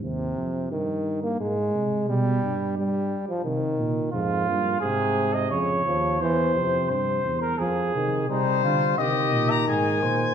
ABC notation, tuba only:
X:1
M:3/4
L:1/8
Q:1/4=87
K:Cphr
V:1 name="Tuba" clef=bass
E,, F,, G,,2 A,, C, | =B,, G,,2 z C, _B,, | F,, G,, A,,2 F,, E,, | =E,, F,, G,, E,, F,, C, |
C, =D, C, B,, A,, B,, |]